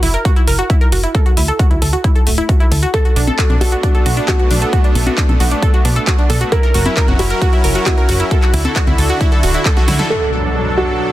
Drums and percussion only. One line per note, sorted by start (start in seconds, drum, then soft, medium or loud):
0.03 open hi-hat loud
0.14 closed hi-hat soft
0.25 kick loud
0.25 closed hi-hat soft
0.36 closed hi-hat soft
0.47 open hi-hat loud
0.59 closed hi-hat soft
0.70 kick loud
0.70 closed hi-hat soft
0.81 closed hi-hat soft
0.92 open hi-hat loud
1.03 closed hi-hat soft
1.15 kick loud
1.15 closed hi-hat soft
1.26 closed hi-hat soft
1.37 open hi-hat loud
1.48 closed hi-hat soft
1.59 kick loud
1.59 closed hi-hat soft
1.71 closed hi-hat soft
1.82 open hi-hat loud
1.93 closed hi-hat soft
2.04 kick loud
2.04 closed hi-hat soft
2.16 closed hi-hat soft
2.27 open hi-hat loud
2.38 closed hi-hat soft
2.49 kick loud
2.49 closed hi-hat soft
2.60 closed hi-hat soft
2.72 open hi-hat loud
2.83 closed hi-hat soft
2.94 kick loud
2.94 closed hi-hat soft
3.05 closed hi-hat soft
3.16 open hi-hat loud
3.28 closed hi-hat soft
3.28 high conga medium
3.39 kick loud
3.39 clap loud
3.39 closed hi-hat soft
3.50 closed hi-hat soft
3.50 high conga medium
3.61 open hi-hat loud
3.72 closed hi-hat soft
3.83 kick loud
3.83 closed hi-hat soft
3.95 closed hi-hat soft
4.06 open hi-hat loud
4.17 closed hi-hat soft
4.28 kick loud
4.28 clap loud
4.28 closed hi-hat soft
4.28 high conga medium
4.39 closed hi-hat soft
4.51 open hi-hat loud
4.62 closed hi-hat soft
4.73 kick loud
4.73 closed hi-hat medium
4.84 closed hi-hat soft
4.95 open hi-hat loud
5.07 closed hi-hat soft
5.07 high conga medium
5.18 kick loud
5.18 clap loud
5.18 closed hi-hat medium
5.29 closed hi-hat soft
5.29 high conga medium
5.40 open hi-hat medium
5.51 closed hi-hat soft
5.62 kick loud
5.62 closed hi-hat medium
5.74 closed hi-hat soft
5.85 open hi-hat loud
5.96 closed hi-hat medium
6.07 kick loud
6.07 clap loud
6.07 closed hi-hat soft
6.19 closed hi-hat soft
6.30 open hi-hat loud
6.41 closed hi-hat soft
6.52 kick loud
6.52 closed hi-hat medium
6.63 closed hi-hat soft
6.74 open hi-hat loud
6.86 closed hi-hat medium
6.86 high conga medium
6.97 kick loud
6.97 clap loud
6.97 closed hi-hat medium
7.08 closed hi-hat soft
7.08 high conga medium
7.19 open hi-hat medium
7.30 closed hi-hat medium
7.42 kick loud
7.42 closed hi-hat medium
7.53 closed hi-hat soft
7.64 open hi-hat loud
7.75 closed hi-hat medium
7.86 kick loud
7.86 clap loud
7.86 closed hi-hat medium
7.86 high conga medium
7.98 closed hi-hat soft
8.09 open hi-hat medium
8.20 closed hi-hat medium
8.31 kick loud
8.31 closed hi-hat medium
8.42 clap soft
8.42 closed hi-hat soft
8.54 open hi-hat loud
8.65 closed hi-hat medium
8.65 high conga medium
8.76 kick loud
8.76 clap loud
8.76 closed hi-hat medium
8.87 closed hi-hat soft
8.87 high conga medium
8.98 open hi-hat loud
9.10 closed hi-hat medium
9.21 kick loud
9.21 closed hi-hat medium
9.32 closed hi-hat soft
9.43 open hi-hat loud
9.54 closed hi-hat medium
9.65 kick loud
9.65 clap loud
9.65 closed hi-hat medium
9.77 snare medium
9.77 closed hi-hat soft
9.88 snare medium
9.88 open hi-hat loud
9.99 snare medium
9.99 closed hi-hat medium